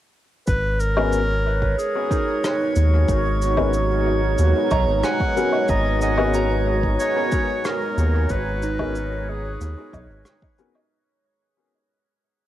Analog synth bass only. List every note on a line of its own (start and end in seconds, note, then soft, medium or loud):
0.48 1.75 G#1 medium
2.76 3.05 D#2 medium
3.09 4.36 G#1 loud
4.39 4.53 D#2 loud
4.71 4.86 B1 medium
4.88 5.02 G#1 medium
5.69 6.97 G#1 loud
7.97 8.26 D#2 medium
8.30 9.58 G#1 loud
9.61 9.75 D#2 loud
9.93 10.08 B1 medium
10.10 10.24 G#1 medium